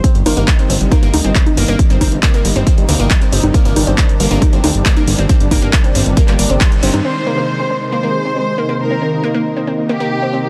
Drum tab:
CC |----------------|----------------|----------------|----------------|
HH |xxoxxxoxxxoxxxox|xxoxxxoxxxoxxxox|xxoxxxoxxxoxxxox|xxoxxxoxxxoxxxox|
CP |----x-------x---|----x-------x---|----x-------x---|----x----x--x---|
CG |--o-----o-o--o--|--o------------o|--o-----o-o--o--|--o------------o|
BD |o---o---o---o---|o-o-o---o---o---|o---o---o---o---|o-o-o---o---o---|

CC |x---------------|----------------|
HH |----------------|----------------|
CP |----------------|----------------|
CG |----------------|----------------|
BD |----------------|----------------|